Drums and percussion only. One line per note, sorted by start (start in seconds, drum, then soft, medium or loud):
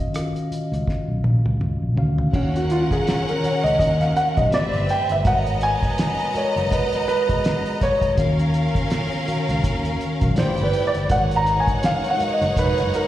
0.14 cross-stick medium
0.14 closed hi-hat medium
0.36 closed hi-hat soft
0.52 closed hi-hat medium
0.73 cross-stick soft
0.73 closed hi-hat soft
0.87 kick medium
0.87 snare soft
1.24 high tom medium
1.46 high tom medium
1.61 mid tom medium
1.97 floor tom medium
2.18 floor tom medium
2.33 kick loud
2.33 crash medium
2.56 closed hi-hat soft
2.70 closed hi-hat medium
2.91 kick medium
2.91 closed hi-hat medium
3.07 snare loud
3.07 closed hi-hat medium
3.29 closed hi-hat soft
3.44 closed hi-hat medium
3.66 closed hi-hat soft
3.80 kick medium
3.80 closed hi-hat medium
4.01 snare soft
4.01 closed hi-hat soft
4.17 closed hi-hat medium
4.37 kick medium
4.37 closed hi-hat soft
4.52 snare loud
4.52 closed hi-hat medium
4.73 closed hi-hat soft
4.89 closed hi-hat medium
5.09 closed hi-hat medium
5.25 kick loud
5.25 closed hi-hat medium
5.47 closed hi-hat soft
5.61 closed hi-hat medium
5.83 kick medium
5.83 closed hi-hat soft
5.98 snare loud
5.98 closed hi-hat loud
6.19 closed hi-hat soft
6.35 closed hi-hat medium
6.57 snare soft
6.57 closed hi-hat medium
6.71 kick medium
6.71 closed hi-hat medium
6.93 snare soft
6.93 closed hi-hat soft
7.08 closed hi-hat medium
7.29 kick medium
7.29 closed hi-hat medium
7.44 snare loud
7.44 closed hi-hat medium
7.66 closed hi-hat soft
7.81 kick medium
7.81 closed hi-hat medium
8.02 kick medium
8.02 closed hi-hat medium
8.17 kick loud
8.17 closed hi-hat medium
8.39 closed hi-hat soft
8.54 closed hi-hat medium
8.75 kick medium
8.75 closed hi-hat medium
8.90 snare loud
8.90 closed hi-hat medium
9.12 closed hi-hat soft
9.28 closed hi-hat medium
9.49 snare soft
9.49 closed hi-hat medium
9.64 kick medium
9.64 closed hi-hat medium
9.85 closed hi-hat soft
10.01 closed hi-hat medium
10.21 kick loud
10.21 closed hi-hat soft
10.36 snare loud
10.36 closed hi-hat medium
10.57 closed hi-hat soft
10.73 closed hi-hat medium
10.94 closed hi-hat medium
11.09 kick loud
11.09 closed hi-hat medium
11.31 closed hi-hat medium
11.46 closed hi-hat medium
11.67 kick medium
11.67 closed hi-hat medium
11.83 snare loud
11.83 closed hi-hat medium
12.04 closed hi-hat soft
12.20 closed hi-hat medium
12.42 snare soft
12.42 closed hi-hat soft
12.56 kick medium
12.56 closed hi-hat medium
12.78 snare soft
12.78 closed hi-hat soft
12.94 closed hi-hat medium